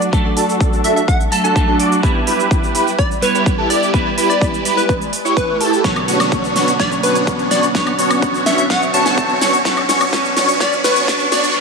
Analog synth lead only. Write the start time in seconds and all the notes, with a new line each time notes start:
Already playing: D6
0.13 A5
0.37 A5
0.84 A5
1.44 A5
1.68 A5
1.79 D6
2.03 B5
2.27 B5
2.75 B5
3.34 B5
3.58 A5
3.70 D6
3.94 B5
4.18 B5
4.65 B5
5.25 C#6
5.61 A5
5.84 C#6
6.08 C#6
6.56 C#6
6.80 C#6
7.03 C#6
7.51 C#6
7.75 C#6
7.99 C#6
8.46 C#6
8.70 C#6
8.94 C#6
9.41 C#6
9.65 C#6
9.89 C#6
10.13 C#6
10.37 C#6
10.60 C#6
10.84 C#6
11.08 C#6
11.32 C#6